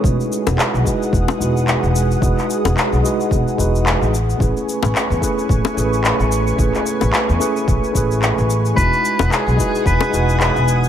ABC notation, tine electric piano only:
X:1
M:4/4
L:1/8
Q:"Swing 16ths" 1/4=110
K:E
V:1 name="Tine electric piano"
[G,DEFB]3 [G,DEFB]2 [G,DEFB]3 | [G,DEFB]3 [G,DEFB]2 [G,DEFB]2 z | [A,CEGB]3 [A,CEGB]2 [A,CEGB]3 | [A,CEGB]3 [A,CEGB]2 [A,CEGB]3 |
[G,DEFB]3 [G,DEFB]2 [G,DEFB]3 |]